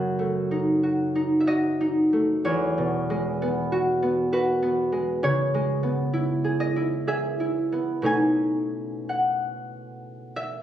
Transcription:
Already playing: F#2 C#3 C#4 D#4 F#5
0.19 A3
0.51 D#4
0.83 F#4
1.15 D#4
1.41 E5
1.47 F#4 D#5
1.81 D#4
2.13 A3
2.45 E2 C#5
2.78 B2
3.10 G#3
3.42 B3
3.72 F#4
4.03 B3
4.33 F#4 B4
4.63 B3
4.92 G#3
5.23 C#3 C#5
5.54 G#3
5.83 B3
6.13 E4
6.44 G#4
6.60 D#5
6.76 E4
7.07 G#4 E5
7.40 E4
7.72 B3
8.02 B2 A3 C#4 D#4
8.06 G#5
9.09 F#5
10.36 E5

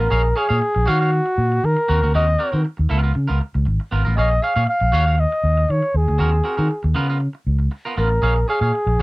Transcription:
Already playing: A#4
0.00 B3 A#4
0.10 A#1 G#4 C#5 F5
0.24 muted clean electric guitar stroke
0.36 G#4 C#5 F5
0.49 A#2 G#4 C#5 F5
0.61 muted clean electric guitar stroke
0.75 A#1, muted clean electric guitar stroke
0.86 D#3 F#4 C#5 F5
1.01 F#4 C#5 F5
1.26 muted clean electric guitar stroke
1.38 A#2
1.52 muted clean electric guitar stroke
1.64 D#3 A#4, muted clean electric guitar stroke
1.77 muted clean electric guitar stroke
1.88 D#2 C4 F#4 A#4
2.02 D2 C4 F#4 A#4
2.14 D#2 C4 F#4 A#4 D#5
2.28 muted clean electric guitar stroke
2.39 C4 F#4 A#4
2.52 D#3 C4 F#4 A#4
2.65 muted clean electric guitar stroke
2.77 D#2, muted clean electric guitar stroke
2.89 C#2 B3 F4 A#4
3.03 B3 F4 A#4
3.14 C#3, muted clean electric guitar stroke
3.28 C#2 B3 F4 A#4
3.40 muted clean electric guitar stroke
3.54 C#2, muted clean electric guitar stroke
3.65 G#1, muted clean electric guitar stroke
3.80 muted clean electric guitar stroke
3.91 G#1 B3 F4 A#4
4.05 A1 B3 F4 A#4
4.17 A#1 G#4 C#5 D#5 F5
4.31 muted clean electric guitar stroke
4.42 G#4 C#5 F5
4.56 A#2 G#4 C#5 F5
4.66 F5, muted clean electric guitar stroke
4.80 A#1, muted clean electric guitar stroke
4.92 D#2 F#4 C#5 F5
5.06 F#4 C#5 F5
5.18 D#5, muted clean electric guitar stroke
5.32 muted clean electric guitar stroke
5.44 D#2
5.57 muted clean electric guitar stroke
5.69 D#3 C#5, muted clean electric guitar stroke
5.83 muted clean electric guitar stroke
5.94 D#2 G#4
6.08 D2, muted clean electric guitar stroke
6.18 D#2 C4 F#4 A#4
6.32 muted clean electric guitar stroke
6.44 C4 F#4 A#4
6.57 D#3 C4 F#4 A#4
6.70 muted clean electric guitar stroke
6.83 D#2, muted clean electric guitar stroke
6.95 C#3 B3 F4 A#4
7.09 B3 F4 A#4
7.20 muted clean electric guitar stroke
7.33 muted clean electric guitar stroke
7.47 C#2
7.59 muted clean electric guitar stroke
7.71 muted clean electric guitar stroke
7.85 B3 F4 A#4
7.97 A1 B3 F4 A#4
8.10 muted clean electric guitar stroke
8.22 A#1 G#4 C#5 F5
8.36 muted clean electric guitar stroke
8.48 G#4 C#5 F5
8.61 A#2 G#4 C#5 F5
8.87 A#1, muted clean electric guitar stroke
8.99 D#2

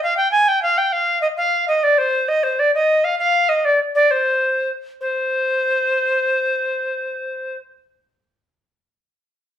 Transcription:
0.03 F5
0.17 G5
0.32 G#5
0.48 G5
0.62 F5
0.78 G5
0.93 F5
1.22 D#5
1.37 F5
1.68 D#5
1.83 D5
1.98 C5
2.28 D#5
2.43 C5
2.59 D5
2.75 D#5
3.04 F5
3.19 F5
3.49 D#5
3.65 D5
3.95 D5
4.11 C5
5.01 C5

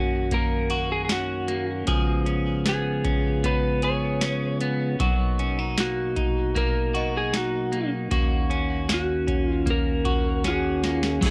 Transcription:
Already playing: F#2 D#3 A#3 C#4 F#4 A#4
0.31 A#3 A#4, kick, closed hi-hat
0.70 F#4, closed hi-hat
0.92 G#4
1.05 G#4
1.09 C#4 F#4, snare, closed hi-hat
1.48 A#3, closed hi-hat
1.87 C#3 F3 G#3 B3 F4 G#4, kick, closed hi-hat
2.26 C#4, closed hi-hat
2.66 B3 G#4, snare, closed hi-hat
3.05 C#4, kick, closed hi-hat
3.44 B3 B4 C#5, kick, closed hi-hat
3.82 G#4 C#5, closed hi-hat
4.21 C#4, snare, closed hi-hat
4.61 B3, closed hi-hat
5.00 B2 F#3 A#3 D#4 F#4, kick, closed hi-hat
5.39 C#4, closed hi-hat
5.59 D#4
5.78 A#3 F#4, snare, closed hi-hat
6.16 D#4, kick, closed hi-hat
6.55 A#3 A#4, kick, closed hi-hat
6.94 F#4 D#5, closed hi-hat
7.17 G#4
7.33 D#4 F#4, snare, closed hi-hat
7.72 A#3, closed hi-hat
8.11 D#2 D#3 A#3 C#4 F#4, kick, closed hi-hat
8.50 C#4, closed hi-hat
8.89 A#3, snare, closed hi-hat
8.94 F#4
9.27 C#4, kick, closed hi-hat
9.48 F4
9.66 A#3, kick, closed hi-hat
9.70 A#4
10.05 F#4, kick, closed hi-hat
10.44 C#4 F#4, snare, closed hi-hat
10.50 G#4
10.84 A#3 F4, snare, closed hi-hat
11.03 snare
11.21 F#2 F#3 A#3 D#4 F4, kick, crash, ride
11.26 A#4

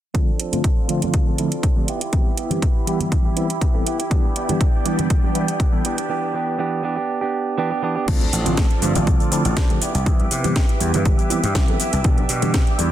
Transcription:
0.14 D3 F3 A3 C4 D4 F4 A4 D5 C6, kick, closed hi-hat
0.39 F3 C4 D4 A4, closed hi-hat, maracas
0.52 D3 F3 A3 C4 F4, closed hi-hat, low conga, maracas
0.64 kick, closed hi-hat
0.88 D3 F3 A3 C4 D4 F4 A4, closed hi-hat, maracas
1.01 C4 D4 A4, closed hi-hat, low conga, maracas
1.14 kick, closed hi-hat
1.27 C4 D4 A4, high conga
1.38 D3 F3 A3 C4 E4, closed hi-hat, maracas
1.52 closed hi-hat
1.63 F3 C4 D4 A4, kick, closed hi-hat
1.76 D3 F3 A3 C4 D4 G4 A4
1.87 B3 E4 G4 B5, closed hi-hat, maracas
2.01 E4 G4, closed hi-hat, maracas
2.12 E3 G3 B3 C4 G4, kick, closed hi-hat
2.37 B3 E4 G4, closed hi-hat, maracas
2.50 E3 G3 B3 C4 G4, closed hi-hat, low conga, maracas
2.62 B3, kick, closed hi-hat
2.87 E3 G3 B3 E4 G4, closed hi-hat, maracas
3.00 E4 G4, closed hi-hat, low conga, maracas
3.11 kick, closed hi-hat, maracas
3.25 E4 G4, high conga, maracas
3.36 E3 G3 B3 C4 E4, closed hi-hat, maracas
3.50 closed hi-hat, maracas
3.61 B3 E4, kick, closed hi-hat
3.74 E3 G3 B3 C4 E4 G4 A4, maracas
3.86 B3 E4 G4, closed hi-hat, maracas
3.99 E4 G4, closed hi-hat
4.10 E3 G3 B3 D4 G4 D5 G5, kick, closed hi-hat
4.24 maracas
4.36 B3 D4 G4, closed hi-hat, maracas
4.49 E3 G3 B3 D4 G4, closed hi-hat, low conga, maracas
4.61 B3 D4 G4, kick, closed hi-hat
4.85 E3 G3 B3 D4 G4, closed hi-hat, maracas
4.98 D4 G4, closed hi-hat, low conga, maracas
5.10 kick, closed hi-hat
5.23 D4 G4, high conga
5.34 E3 G3 B3 D4 E4, closed hi-hat, maracas
5.48 closed hi-hat, maracas
5.60 B3 D4 G4, kick, closed hi-hat
5.72 E3 G3 B3 D4 G4 A4, maracas
5.84 E3 B3 D4 G4, closed hi-hat, maracas
5.97 B3 D4 G4, closed hi-hat, maracas
6.09 E3 B3 D4 G4
6.34 E3 B3 D4 G4
6.58 E3 B3 D4 G4
6.83 E3 B3 D4 G4
6.96 B3 D4 G4
7.21 B3 D4 G4
7.58 E3 B3 D4 G4
7.71 B3 D4 G4
7.82 E3 B3 D4 G4
7.96 B3 D4 G4
8.07 D2 D3 F3 A3 C4 F4 D5 D6, kick, closed hi-hat, crash, shaker
8.20 closed hi-hat, high conga, maracas
8.33 A1, open hi-hat, maracas, shaker
8.45 D3 F3 A3 C4 F4, closed hi-hat, low conga, shaker, maracas
8.57 F3 C4 D4 A4, kick, snare, closed hi-hat, high conga, maracas, shaker
8.71 closed hi-hat
8.81 G2 D3 F3 A3 C4 D4 F4 A4, open hi-hat, maracas, shaker
8.95 A1 C4 D4 A4, closed hi-hat, high conga, low conga, maracas, shaker
9.07 C2, kick, closed hi-hat, shaker
9.20 C4 D4 A4, closed hi-hat, shaker
9.31 D3 F3 A3 C4 D4 E4 A4, open hi-hat, high conga, shaker, maracas
9.44 A1 C4 D4 A4, closed hi-hat, shaker
9.56 F3 D4, kick, snare, closed hi-hat, shaker
9.69 D3 F3 A3 C4 G4, closed hi-hat, high conga, maracas
9.81 B3 E4 G4 B4 E5, muted slap bass stroke, open hi-hat, shaker, maracas
9.94 C2 E4 G4, closed hi-hat, shaker
10.06 C2 E3 G3 B3 C4 E4 G4, kick, closed hi-hat, shaker
10.20 closed hi-hat, high conga, maracas
10.31 C3, open hi-hat, shaker, maracas
10.44 E3 G3 B3 C4 G4, closed hi-hat, low conga, maracas, shaker
10.55 B3 E4 G4, kick, snare, closed hi-hat, high conga, maracas, shaker
10.69 closed hi-hat
10.80 E2 E3 G3 B3 E4 G4, open hi-hat, maracas, shaker
10.93 G2 E4 G4, closed hi-hat, high conga, low conga, maracas, shaker
11.05 G1, kick, closed hi-hat, shaker
11.18 E4 G4, closed hi-hat, shaker
11.29 E3 G3 B3 C4 E4 G4, open hi-hat, high conga, maracas, shaker
11.43 G2 E4 G4, closed hi-hat, shaker, maracas
11.55 C2 B3 E4 G4, kick, snare, closed hi-hat, shaker
11.68 E3 G3 B3 C4 A4, closed hi-hat, high conga, maracas
11.79 B3 E4 G4, muted slap bass stroke, open hi-hat, maracas, shaker
11.92 C2 E4 G4, closed hi-hat, shaker
12.04 B1 E3 G3 B3 D4 G4 D6, kick, closed hi-hat, shaker
12.18 closed hi-hat, high conga, maracas
12.29 B2, open hi-hat, shaker, maracas
12.42 E3 G3 B3 D4 G4, closed hi-hat, low conga, shaker, maracas
12.54 B3 D4 G4, kick, snare, closed hi-hat, high conga, maracas, shaker
12.67 closed hi-hat
12.78 E2 E3 G3 B3 D4 G4, open hi-hat, shaker, maracas

